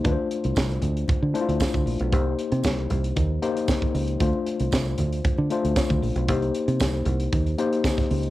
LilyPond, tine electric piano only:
\new Staff \with { instrumentName = "Tine electric piano" } { \time 4/4 \key c \dorian \tempo 4 = 115 <a d' f' b' c''>4~ <a d' f' b' c''>16 r4 r16 <a d' e' f' c''>4 r8 | <bes ees' g' c''>4~ <bes ees' g' c''>16 r4 r16 <bes ees' g' c''>4 r8 | <a d' f' c''>4~ <a d' f' c''>16 r4 r16 <a d' f' c''>4 r8 | <bes ees' g' c''>4~ <bes ees' g' c''>16 r4 r16 <bes ees' g' c''>4 r8 | }